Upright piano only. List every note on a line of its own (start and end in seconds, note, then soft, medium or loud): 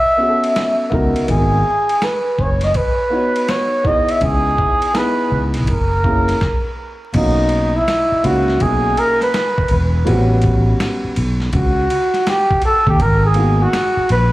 0.17 0.88 B3 medium
0.17 1.24 C#4 medium
0.17 0.91 F#4 medium
0.17 0.29 G#4 medium
0.27 1.28 A4 medium
0.90 1.25 B3 medium
0.90 1.26 D#4 medium
0.90 1.28 F#4 medium
0.90 1.29 A#4 medium
1.27 1.57 B3 medium
1.27 1.57 D#4 medium
1.27 1.58 F#4 soft
1.27 1.59 A#4 medium
3.10 3.82 B3 medium
3.10 3.83 D#4 medium
3.10 4.17 F#4 medium
3.10 4.17 C#5 medium
3.83 4.89 B3 medium
3.83 4.90 D#4 medium
3.83 4.90 E4 medium
3.83 4.91 G#4 medium
4.94 5.68 B3 medium
4.94 5.68 D#4 medium
4.94 5.69 E4 medium
4.94 5.69 G#4 medium
6.03 6.33 A#3 medium
6.03 6.34 C#4 medium
6.03 6.34 E4 medium
6.03 6.35 G#4 medium
7.13 7.69 A#3 medium
7.13 7.70 C#4 medium
7.13 7.71 D#4 medium
7.13 7.71 F#4 medium
8.23 9.28 A#3 medium
8.23 9.29 C#4 medium
8.23 9.29 D#4 medium
8.23 9.30 F#4 medium
10.05 11.11 G3 medium
10.05 11.12 B3 medium
10.05 10.16 C4 medium
10.05 11.13 F#4 medium
10.14 11.15 C#4 medium
13.34 13.64 A#3 medium
13.34 13.65 B3 medium
13.34 13.66 D#4 medium
13.34 13.66 F#4 medium